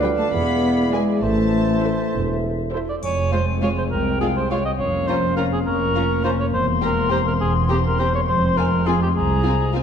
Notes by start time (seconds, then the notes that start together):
Already playing: D2 D3 B4 D5 F5
0.02 G3 F4 B4 D5 G5
0.18 A3 A5
0.32 E1 E2 E3 B3 G#4 B5
0.92 G#3 F4 G#4 B4 D5 G#5
1.22 A1 A3 A4 C5 E5 A5
1.82 E4 A4 C5 E5
2.12 E1
2.72 E4 A4 C5 E5
2.89 D5
3.02 F1 F2 G#3 C4 C#5 G#5, triangle
3.32 G#3 F4 C5 F5
3.62 G#3 F4 C#5 F5
3.77 C5
3.91 C2 A#4 G5
4.20 G#3 F4 G#4 F5
4.36 C5
4.50 G#3 F4 C#5 F5
4.65 D#5
4.79 F1 F2 A#3 C#4 C#5 F5
5.07 C#4 F4 C5 A#5
5.37 C#4 F4 A#4 A#5
5.53 G#4
5.66 F1 F2 A#4 C#6
5.95 C#4 F4 A#5
6.24 C#4 F4 C5 A#5
6.40 C#5
6.53 E1 E2 C4 C5 C6
6.82 C4 G4 A#4 A#5
7.10 C4 G4 C5 A#5
7.27 A#4
7.40 E1 E2 G#4
7.69 C4 G4 A#5
7.87 A#4
7.98 C4 G4 C5 A#5
8.15 C#5
8.28 F1 F2 G#3 C5
8.57 C4 F4 A#4 G#5
8.86 C4 F4 G#4 G#5
9.02 G4
9.15 C2 G#4 A#5
9.44 C4 F4 G#5
9.73 C4 F4 G#5